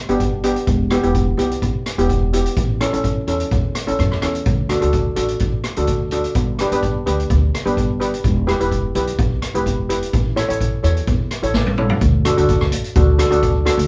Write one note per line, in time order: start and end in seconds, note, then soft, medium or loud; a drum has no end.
0.09 0.55 G1 medium
0.09 0.30 B3 medium
0.09 0.30 D4 medium
0.09 0.30 G4 medium
0.09 closed hi-hat medium
0.20 kick medium
0.20 closed hi-hat medium
0.43 0.67 B3 medium
0.43 0.68 D4 medium
0.43 0.67 G4 medium
0.43 closed hi-hat medium
0.56 closed hi-hat medium
0.67 0.96 E1 medium
0.67 kick loud
0.67 closed hi-hat medium
0.90 0.98 B3 medium
0.90 0.98 E4 medium
0.90 0.99 G4 medium
0.90 cross-stick medium
0.90 closed hi-hat medium
1.03 1.31 E1 medium
1.03 1.25 B3 medium
1.03 1.25 E4 medium
1.03 1.25 G4 medium
1.03 closed hi-hat soft
1.15 kick medium
1.15 closed hi-hat medium
1.37 1.56 B1 medium
1.37 1.74 B3 medium
1.37 1.74 E4 medium
1.37 1.74 G4 medium
1.37 closed hi-hat medium
1.51 closed hi-hat medium
1.62 1.81 B1 medium
1.62 kick medium
1.62 closed hi-hat medium
1.86 cross-stick medium
1.86 closed hi-hat medium
1.98 2.44 E1 medium
1.98 2.20 B3 medium
1.98 2.19 E4 medium
1.98 2.20 G4 medium
1.98 closed hi-hat medium
2.09 kick medium
2.09 closed hi-hat soft
2.33 2.57 B3 medium
2.33 2.57 E4 medium
2.33 2.57 G4 medium
2.33 closed hi-hat medium
2.46 closed hi-hat medium
2.57 2.85 A1 medium
2.57 kick loud
2.57 closed hi-hat medium
2.81 2.88 C#4 medium
2.81 2.88 E4 medium
2.81 2.88 A4 medium
2.81 cross-stick medium
2.81 closed hi-hat medium
2.93 3.21 A1 medium
2.93 3.14 C#4 medium
2.93 3.14 E4 medium
2.93 3.14 A4 medium
2.93 closed hi-hat medium
3.04 kick medium
3.04 closed hi-hat medium
3.27 3.46 E2 medium
3.27 3.64 C#4 medium
3.27 3.64 E4 medium
3.27 3.64 A4 medium
3.27 closed hi-hat medium
3.40 closed hi-hat medium
3.51 3.70 E2 medium
3.51 kick loud
3.51 closed hi-hat soft
3.75 cross-stick medium
3.75 closed hi-hat medium
3.87 3.97 A1 medium
3.87 4.09 C#4 medium
3.87 4.09 E4 medium
3.87 4.09 A4 medium
3.87 closed hi-hat medium
3.99 4.20 F#2 medium
3.99 kick medium
3.99 cross-stick medium
3.99 closed hi-hat soft
4.12 cross-stick medium
4.22 4.44 E2 medium
4.22 4.46 C#4 medium
4.22 4.46 E4 medium
4.22 4.46 A4 medium
4.22 cross-stick medium
4.22 closed hi-hat medium
4.35 closed hi-hat medium
4.46 4.75 D2 medium
4.46 kick loud
4.46 closed hi-hat soft
4.69 4.77 D4 medium
4.69 4.78 F#4 medium
4.69 4.77 A4 medium
4.69 cross-stick medium
4.69 closed hi-hat medium
4.81 5.10 D2 medium
4.81 5.03 D4 medium
4.81 5.03 F#4 medium
4.81 5.03 A4 medium
4.81 closed hi-hat medium
4.93 kick medium
4.93 closed hi-hat medium
5.16 5.36 A1 medium
5.16 5.53 D4 medium
5.16 5.53 F#4 medium
5.16 5.53 A4 medium
5.16 closed hi-hat medium
5.28 closed hi-hat medium
5.39 5.59 A1 medium
5.39 kick medium
5.39 closed hi-hat soft
5.64 cross-stick medium
5.64 closed hi-hat medium
5.76 6.23 D2 medium
5.76 5.98 D4 medium
5.76 5.99 F#4 medium
5.76 5.98 A4 medium
5.76 closed hi-hat medium
5.87 kick medium
5.87 closed hi-hat medium
6.11 6.36 D4 medium
6.11 6.36 F#4 medium
6.11 6.36 A4 medium
6.11 closed hi-hat medium
6.24 closed hi-hat medium
6.35 6.64 G1 medium
6.35 kick loud
6.35 closed hi-hat medium
6.59 6.67 D4 medium
6.59 6.67 G4 medium
6.59 6.67 B4 medium
6.59 cross-stick medium
6.59 closed hi-hat medium
6.72 6.99 G1 medium
6.72 6.94 D4 medium
6.72 6.94 G4 medium
6.72 6.93 B4 medium
6.72 closed hi-hat medium
6.83 kick medium
6.83 closed hi-hat soft
7.06 7.25 D2 medium
7.06 7.43 D4 medium
7.06 7.43 G4 medium
7.06 7.43 B4 medium
7.06 closed hi-hat medium
7.20 closed hi-hat medium
7.30 7.49 D2 medium
7.30 kick medium
7.30 closed hi-hat medium
7.55 cross-stick medium
7.55 closed hi-hat medium
7.65 8.12 G1 medium
7.65 7.87 D4 medium
7.65 7.87 G4 medium
7.65 7.87 B4 medium
7.65 closed hi-hat soft
7.77 kick medium
7.77 closed hi-hat medium
8.00 8.24 D4 medium
8.00 8.24 G4 medium
8.00 8.24 B4 medium
8.00 closed hi-hat medium
8.14 closed hi-hat soft
8.24 8.53 E1 medium
8.24 kick loud
8.24 closed hi-hat soft
8.47 8.55 E4 medium
8.47 8.55 G4 medium
8.47 8.55 B4 medium
8.47 cross-stick medium
8.47 closed hi-hat medium
8.60 8.88 E1 medium
8.60 8.82 E4 medium
8.60 8.82 G4 medium
8.60 8.82 B4 medium
8.60 closed hi-hat medium
8.72 kick medium
8.72 closed hi-hat soft
8.95 9.14 B1 medium
8.95 9.31 E4 medium
8.95 9.32 G4 medium
8.95 9.32 B4 medium
8.95 closed hi-hat medium
9.07 closed hi-hat medium
9.19 9.38 B1 medium
9.19 kick loud
9.19 closed hi-hat soft
9.42 cross-stick medium
9.42 closed hi-hat medium
9.54 10.01 E1 medium
9.54 9.76 E4 medium
9.54 9.76 G4 medium
9.54 9.76 B4 medium
9.54 closed hi-hat soft
9.66 kick medium
9.66 closed hi-hat medium
9.89 10.13 E4 medium
9.89 10.13 G4 medium
9.89 10.13 B4 medium
9.89 closed hi-hat medium
10.02 closed hi-hat medium
10.13 10.42 A1 medium
10.13 kick loud
10.13 closed hi-hat medium
10.36 10.44 E4 medium
10.36 10.44 A4 medium
10.36 10.44 C#5 medium
10.36 cross-stick medium
10.36 closed hi-hat medium
10.48 10.77 A1 medium
10.48 10.70 E4 medium
10.48 10.70 A4 medium
10.48 10.70 C#5 medium
10.48 closed hi-hat medium
10.61 kick medium
10.61 closed hi-hat medium
10.83 11.02 E2 medium
10.83 11.20 E4 medium
10.83 11.20 A4 medium
10.83 11.20 C#5 medium
10.83 closed hi-hat medium
10.97 closed hi-hat medium
11.07 11.26 E2 medium
11.07 kick loud
11.07 closed hi-hat medium
11.31 cross-stick medium
11.31 closed hi-hat medium
11.43 11.89 A1 medium
11.43 11.64 E4 medium
11.43 11.64 A4 medium
11.43 11.65 C#5 medium
11.43 closed hi-hat medium
11.54 kick medium
11.54 snare medium
11.66 high tom medium
11.78 12.02 E4 medium
11.78 12.02 A4 medium
11.78 12.02 C#5 medium
11.78 mid tom medium
11.89 floor tom medium
12.01 12.30 D2 medium
12.01 kick loud
12.01 closed hi-hat medium
12.25 12.33 D4 medium
12.25 12.33 F#4 medium
12.25 12.33 A4 loud
12.25 cross-stick medium
12.25 closed hi-hat medium
12.37 12.72 D2 medium
12.37 12.72 D4 medium
12.37 12.72 F#4 medium
12.37 12.72 A4 medium
12.37 closed hi-hat medium
12.49 kick medium
12.49 closed hi-hat medium
12.61 cross-stick medium
12.72 12.82 A1 medium
12.72 closed hi-hat medium
12.84 closed hi-hat medium
12.95 13.24 D2 medium
12.95 13.10 D4 medium
12.95 13.11 F#4 medium
12.95 13.11 A4 medium
12.95 kick loud
12.95 closed hi-hat medium
13.18 13.26 D4 medium
13.18 13.26 F#4 medium
13.18 13.26 A4 medium
13.18 cross-stick medium
13.18 closed hi-hat medium
13.30 13.68 D2 medium
13.30 13.52 D4 medium
13.30 13.52 F#4 medium
13.30 13.52 A4 medium
13.30 closed hi-hat medium
13.43 kick medium
13.43 closed hi-hat medium
13.65 13.87 D4 medium
13.65 13.87 F#4 medium
13.65 13.87 A4 medium
13.65 cross-stick medium
13.65 closed hi-hat medium
13.78 13.87 D2 loud
13.78 closed hi-hat medium